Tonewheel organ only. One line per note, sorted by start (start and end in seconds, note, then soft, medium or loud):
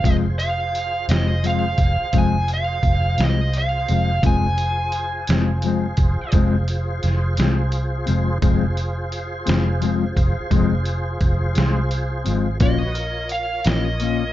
0.02 4.18 F4 soft
0.02 4.19 G#4 medium
0.02 4.19 C5 medium
4.22 8.38 F4 medium
4.22 8.38 G#4 medium
4.22 8.38 C5 medium
8.42 12.58 F4 medium
8.42 12.58 G#4 medium
8.42 12.58 C5 medium
12.60 12.96 F#4 soft
12.60 12.96 B4 soft
12.60 12.93 C#5 medium
12.94 14.33 F4 medium
12.94 14.33 A#4 medium
12.94 14.33 C#5 soft